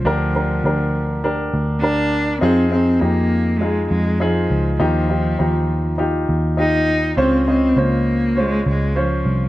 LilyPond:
<<
  \new Staff \with { instrumentName = "Grand piano" } { \time 4/4 \key f \minor \tempo 4 = 101 <d' g' bes'>8 <d' g' bes'>8 <d' g' bes'>4 <d' g' bes'>4 <d' g' bes'>4 | <ees' f' aes'>8 <ees' f' aes'>8 <ees' f' g'>4 <ees' f' aes'>4 <ees' f' aes'>4 | <ees' f' g'>8 <ees' f' g'>8 <ees' f' g'>4 <ees' f' g'>4 <ees' f' g'>4 | <des' f' c''>8 <des' f' ees''>8 <des' f' c''>4 <des' f' c''>4 <des' f' c''>4 | }
  \new Staff \with { instrumentName = "Grand piano" } { \clef bass \time 4/4 \key f \minor d4. r2 r8 | r1 | ees4. r2 r8 | des4. r2 r8 | }
  \new Staff \with { instrumentName = "Cello" } { \time 4/4 \key f \minor f2 r4 d'4 | c'8 c'8 bes4 aes8 aes8 f4 | f2 r4 ees'4 | c'8 c'8 bes4 aes8 aes8 f4 | }
  \new Staff \with { instrumentName = "Picked electric bass" } { \clef bass \time 4/4 \key f \minor d,4 d,4. d,4. | f,4 f,4. f,4 des,8 | ees,4 ees,4. ees,4. | des,4 des,4. des,4 c,8 | }
>>